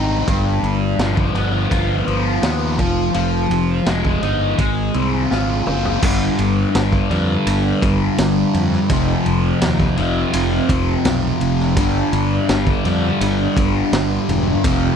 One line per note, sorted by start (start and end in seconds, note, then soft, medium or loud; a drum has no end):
0.00 0.22 G#1 medium
0.00 0.28 G3 medium
0.00 0.28 C4 medium
0.00 0.28 D#4 medium
0.28 0.58 G1 medium
0.28 2.07 G2 medium
0.28 kick loud
0.28 ride medium
0.63 0.94 G1 medium
0.63 ride medium
0.99 1.29 G1 medium
0.99 2.06 F3 medium
0.99 snare loud
0.99 ride medium
1.17 kick medium
1.34 1.65 G1 medium
1.34 2.41 B3 medium
1.34 ride medium
1.71 2.02 G1 medium
1.71 2.79 F4 medium
1.71 kick medium
1.71 ride medium
2.07 2.38 G1 medium
2.07 2.77 F3 medium
2.07 ride medium
2.42 2.80 D#2 medium
2.42 2.79 B3 medium
2.42 snare loud
2.42 ride medium
2.79 3.09 F1 medium
2.79 3.13 F3 medium
2.79 kick medium
2.79 ride medium
3.14 3.45 F1 medium
3.14 4.59 F3 medium
3.14 ride medium
3.50 3.81 F1 medium
3.50 ride medium
3.86 4.17 F1 medium
3.86 4.58 G#3 medium
3.86 snare loud
3.86 ride medium
4.05 kick medium
4.23 4.54 G1 medium
4.23 4.59 D#4 medium
4.23 ride medium
4.58 4.89 G#1 medium
4.58 6.03 G#3 medium
4.58 kick medium
4.58 ride medium
4.94 5.25 C2 medium
4.94 6.03 C4 medium
4.94 ride medium
5.31 5.61 G#1 medium
5.31 6.03 F4 medium
5.31 snare medium
5.67 5.97 F#1 medium
5.67 6.03 C5 medium
5.67 mid tom medium
5.85 floor tom medium
6.02 6.28 G1 medium
6.02 7.08 G2 loud
6.02 7.09 D3 loud
6.02 7.10 G3 loud
6.02 kick loud
6.02 crash loud
6.38 6.64 G1 medium
6.38 ride medium
6.75 7.00 G1 medium
6.75 snare loud
6.75 ride medium
6.92 kick medium
7.11 7.36 F2 medium
7.11 8.89 G2 medium
7.11 8.89 D3 medium
7.11 8.93 G3 medium
7.11 ride medium
7.46 7.71 G1 medium
7.46 ride loud
7.82 8.07 G1 loud
7.82 kick medium
7.82 ride medium
8.18 8.43 G1 medium
8.18 snare loud
8.18 ride loud
8.54 8.79 F2 medium
8.54 ride medium
8.73 snare soft
8.89 9.15 F1 medium
8.89 9.96 F2 medium
8.89 9.96 C3 medium
8.89 9.97 F3 medium
8.89 kick loud
8.89 ride loud
9.26 9.51 F1 medium
9.26 ride medium
9.61 9.87 D#2 medium
9.61 snare loud
9.61 ride loud
9.80 kick medium
9.97 10.23 F1 loud
9.97 11.76 C3 medium
9.97 11.76 F3 medium
9.97 ride medium
10.02 11.77 F2 medium
10.33 10.59 F1 loud
10.33 ride loud
10.69 10.94 F1 medium
10.69 kick medium
10.69 ride medium
11.05 11.30 B1 medium
11.05 snare loud
11.05 ride loud
11.41 11.77 F1 medium
11.41 ride medium
11.59 snare soft
11.77 12.02 G1 medium
11.77 12.83 G2 medium
11.77 12.84 D3 medium
11.77 12.84 G3 loud
11.77 kick loud
11.77 ride loud
12.13 12.38 G1 loud
12.13 ride medium
12.49 12.74 G1 medium
12.49 snare loud
12.49 ride medium
12.67 kick medium
12.85 13.10 F2 medium
12.85 14.64 G2 medium
12.85 14.63 D3 medium
12.85 14.67 G3 medium
12.85 ride medium
13.21 13.46 G1 loud
13.21 ride loud
13.57 13.82 G1 medium
13.57 kick medium
13.57 ride medium
13.92 14.18 G1 medium
13.92 snare loud
13.92 ride loud
14.29 14.54 E1 medium
14.29 ride medium
14.64 14.89 F1 medium
14.64 14.96 F2 medium
14.64 14.96 C3 medium
14.64 14.96 F3 loud
14.64 kick loud
14.64 ride loud